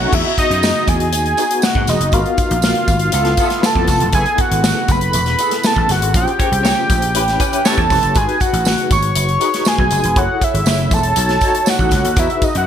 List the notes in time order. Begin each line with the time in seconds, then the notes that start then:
Already playing: A3 C#4 D#4 F#4 F#5
0.13 E2 B3 D#4 F#4 G#4 E5, kick, crash, tambourine
0.38 D#5, kick, closed hi-hat
0.50 F#2, closed hi-hat
0.63 snare, tambourine
0.87 E2 G#5, kick, closed hi-hat, tambourine
1.00 closed hi-hat
1.12 D#2, closed hi-hat, tambourine
1.26 closed hi-hat
1.37 B3 D#4 F#4 G#4, closed hi-hat, tambourine
1.51 closed hi-hat
1.62 F#5, snare, tambourine
1.75 G#2, kick
1.87 E1 D#5, snare, closed hi-hat, tambourine
2.01 F#1, closed hi-hat
2.12 G#1 A#3 D#4 F#4 A#4 F5, kick, closed hi-hat, tambourine
2.18 B3
2.26 closed hi-hat
2.37 kick, closed hi-hat, tambourine
2.51 A#1, closed hi-hat
2.62 snare, tambourine
2.75 closed hi-hat
2.88 G#1, kick, closed hi-hat, tambourine
2.99 closed hi-hat
3.12 C#2 B3 E4 F4 A4, closed hi-hat, tambourine
3.25 snare, closed hi-hat
3.37 B3 E4 F4 A4, kick, closed hi-hat, tambourine
3.50 snare, closed hi-hat
3.63 A5, snare, tambourine
3.75 F2, kick
3.88 F1, kick, snare, closed hi-hat, tambourine
4.00 E1, closed hi-hat
4.13 F#1 B3 E4 G#4 A4 G#5, kick, closed hi-hat, tambourine
4.26 closed hi-hat
4.38 F#5, kick, closed hi-hat, tambourine
4.51 G#1, closed hi-hat
4.64 snare, tambourine
4.88 F#1 B5, kick, closed hi-hat, tambourine
5.01 closed hi-hat
5.13 E1, closed hi-hat, tambourine
5.26 snare, closed hi-hat
5.39 B3 E4 G#4 A4, closed hi-hat, tambourine
5.51 snare, closed hi-hat
5.63 A5, snare, tambourine
5.76 A1, kick
5.89 F#1 F#5, snare, closed hi-hat, tambourine
6.02 G#1, closed hi-hat
6.14 A#1 C#4 F4 G#4 C5 G5, kick, closed hi-hat, tambourine
6.28 closed hi-hat
6.39 A#3 G#4 C#5, kick, closed hi-hat
6.52 C2, closed hi-hat
6.63 A#3 G#4 C#5, snare, tambourine
6.90 A#1, kick, closed hi-hat, tambourine
7.02 closed hi-hat
7.14 A1 C#4 E4 G4 B4, closed hi-hat, tambourine
7.28 snare, closed hi-hat
7.39 C#4 E4 G4 B4, kick, closed hi-hat, tambourine
7.53 closed hi-hat
7.65 G3 E4 C#5 A5, snare, tambourine
7.78 E2, kick, closed hi-hat
7.90 E1, kick, snare, open hi-hat, tambourine
8.02 F#1, closed hi-hat
8.15 G#1 D#4 F#4 G#4 B4 G#5, kick, closed hi-hat, tambourine
8.29 closed hi-hat
8.40 F#5, kick, closed hi-hat, tambourine
8.53 A1, closed hi-hat
8.65 snare, tambourine
8.78 closed hi-hat
8.91 G#1 C#6, kick, closed hi-hat, tambourine
9.03 closed hi-hat
9.16 F#1, closed hi-hat, tambourine
9.29 closed hi-hat
9.40 D#4 F#4 G#4 B4, closed hi-hat, tambourine
9.54 snare, closed hi-hat
9.65 G#5, snare, tambourine
9.78 B1, kick
9.91 F#1, closed hi-hat, tambourine
10.04 E1, closed hi-hat
10.16 F#1 E4 G#4 A4 C#5 F#5, kick, closed hi-hat
10.41 E5, kick, closed hi-hat, tambourine
10.54 G#1, closed hi-hat
10.66 F#1, snare, tambourine
10.78 closed hi-hat
10.91 E1 A5, kick, closed hi-hat, tambourine
11.03 closed hi-hat
11.16 B1 D#4 F#4 A4 C#5, closed hi-hat, tambourine
11.29 snare, closed hi-hat
11.41 D#4 F#4 A4 C#5, kick, closed hi-hat, tambourine
11.55 closed hi-hat
11.66 F#5, snare, tambourine
11.79 A1, kick
11.91 C#2, kick, snare, closed hi-hat, tambourine
12.05 D#2, closed hi-hat
12.16 E2 D#4 F#4 G#4 B4 E5, kick, closed hi-hat, tambourine
12.30 closed hi-hat
12.42 D#5, kick, closed hi-hat, tambourine
12.55 F#2 F#5, closed hi-hat